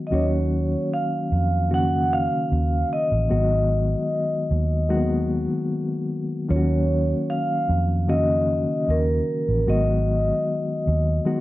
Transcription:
Already playing: reed electric piano D#3 F#3 G#3 B3 F#4
0.07 reed electric piano D#3, vibraphone D#5
0.11 fingered electric bass D#2, reed electric piano F#3 A#3 C#4 F#4, vibraphone C#5
0.94 vibraphone F5
1.32 fingered electric bass F2
1.70 reed electric piano C#3 D#3 A#3 C#4 F#4
1.74 vibraphone F#5
2.13 vibraphone F5
2.52 fingered electric bass D#2
2.93 vibraphone D#5
3.12 fingered electric bass A1
3.29 fingered electric bass G#1, reed electric piano D#3 F#3 G#3 B3 F#4
4.51 fingered electric bass D#2
4.89 reed electric piano D#3 F#3 G#3 A#3 F#4
4.96 reed electric piano B3
6.48 fingered electric bass D#2, reed electric piano D#3 F#3 A#3 C#4 F4, vibraphone C#5
6.56 reed electric piano F#4
7.30 vibraphone F5
7.69 fingered electric bass F2
8.08 reed electric piano C#3 D#3 A#3 C#4 F#4, vibraphone D#5
8.89 fingered electric bass D#2, vibraphone A#4
9.49 fingered electric bass A1
9.67 fingered electric bass G#1, reed electric piano D#3 F#3 G#3 B3 F#4, vibraphone D#5
10.87 fingered electric bass D#2
11.25 reed electric piano D#3 F#3 G#3 B3 F#4

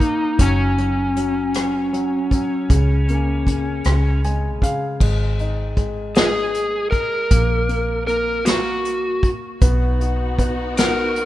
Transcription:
Already playing: fingered electric bass A#1, electric slide guitar D#4
0.00 grand piano A#3, kick, closed hi-hat
0.39 fingered electric bass F#1, grand piano F#3, electric slide guitar C#4, kick, closed hi-hat
0.78 grand piano F#3, closed hi-hat
1.16 grand piano F#3, closed hi-hat
1.54 grand piano F#3, cross-stick, closed hi-hat
1.93 grand piano F#3, closed hi-hat
2.31 grand piano F#3, kick, closed hi-hat
2.70 fingered electric bass C#2, grand piano C#3, kick, closed hi-hat
3.08 grand piano A#3, closed hi-hat
3.47 grand piano C#3, kick, closed hi-hat
3.84 fingered electric bass C#2, grand piano C#3, cross-stick, closed hi-hat
4.24 grand piano G#3 G#5, closed hi-hat
4.62 grand piano C#3 F5, kick, closed hi-hat
5.00 fingered electric bass G#1, grand piano G#3, kick, crash
5.39 grand piano D#4, closed hi-hat
5.77 grand piano G#3, kick, closed hi-hat
6.15 grand piano D#4, electric slide guitar G#4, snare, closed hi-hat
6.54 closed hi-hat
6.91 electric slide guitar A#4, kick, closed hi-hat
7.31 fingered electric bass A#1, grand piano A#3, kick, closed hi-hat
7.69 grand piano A#3, closed hi-hat
8.07 grand piano A#3, electric slide guitar A#4, closed hi-hat
8.45 grand piano A#3, electric slide guitar F#4, snare, closed hi-hat
8.85 closed hi-hat
9.23 kick, closed hi-hat
9.61 fingered electric bass B1, grand piano B3, string section B3 D#4 F#4, kick, closed hi-hat
10.00 grand piano F#4, closed hi-hat
10.39 grand piano B3, kick, closed hi-hat
10.77 grand piano F#4, electric slide guitar A#4, snare, closed hi-hat
11.16 closed hi-hat

